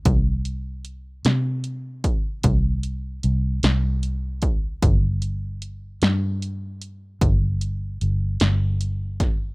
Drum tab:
HH |xxxxxxxxxxxx|xxxxxxxxxxxx|
SD |---o-----o--|---o-----o-o|
BD |o----oo----o|o-----o----o|